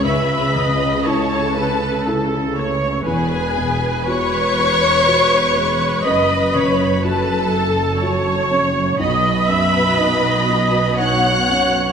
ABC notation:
X:1
M:3/4
L:1/8
Q:1/4=61
K:E
V:1 name="Violin section"
b2 a3 z | g2 c'4 | b2 a3 z | b4 f'2 |]
V:2 name="Viola section"
e d c B A c | B6 | d c B A c2 | d e d2 c2 |]
V:3 name="Violin section"
B2 A3 z | G2 c4 | B2 A3 z | B4 f2 |]
V:4 name="Felt piano"
C,, C, E B E A, | E,, B,, F B F G, | F,, C, F A F C | B,,, F,, D F D C |]
V:5 name="Cello section" clef=bass
C,6 | E,,6 | F,,6 | B,,6 |]
V:6 name="Double bass section" clef=bass
C,,6 | E,,,6 | F,,,6 | B,,,6 |]